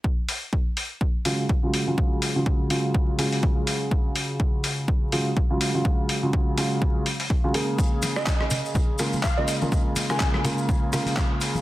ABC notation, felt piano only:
X:1
M:4/4
L:1/16
Q:"Swing 16ths" 1/4=124
K:Dbmix
V:1 name="Felt piano" clef=bass
z8 z2 [D,G,A,F] z2 [D,G,A,F]2 [D,G,A,F]- | [D,G,A,F]3 [D,G,A,F]3 [D,G,A,F]4 [D,G,A,F]6- | [D,G,A,F]8- [D,G,A,F]2 [D,G,A,F] z2 [D,G,A,F]2 [D,G,A,F]- | [D,G,A,F]3 [D,G,A,F]3 [D,G,A,F]4 z3 [D,G,A,F] [D,A,B,A]2- |
[D,A,B,A]8- [D,A,B,A]2 [D,A,B,F] z2 [D,A,B,F]2 [D,A,B,F]- | [D,A,B,F]3 [D,A,B,F]3 [D,A,B,F]4 [D,A,B,F]6 |]